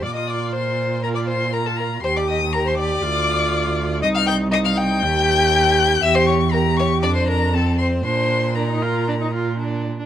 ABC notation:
X:1
M:4/4
L:1/16
Q:1/4=120
K:Bb
V:1 name="Violin"
d' e' d'2 c'4 b d' c'2 b a b2 | c' d' e'2 b c' d'8- d'2 | e' f' g'2 e' f' g'8- g'2 | =e' c' ^c'2 b2 c'2 d' =c' b2 a2 c'2 |
c'4 b8 z4 |]
V:2 name="Violin"
d e d2 c4 B d c2 B A B2 | c d e2 B c d8- d2 | e f g2 e f g8- g2 | =e c ^c2 B2 c2 d =c B2 A2 c2 |
c4 B8 z4 |]
V:3 name="Viola"
F8 F4 F4 | G4 G4 F8 | E4 E4 G8 | G4 G4 D4 C4 |
D4 D E F2 D E F2 D3 D |]
V:4 name="Cello" clef=bass
B,,16 | E,,8 D,,8 | C,,8 E,,8 | =E,,8 F,,8 |
B,,12- B,,2 z2 |]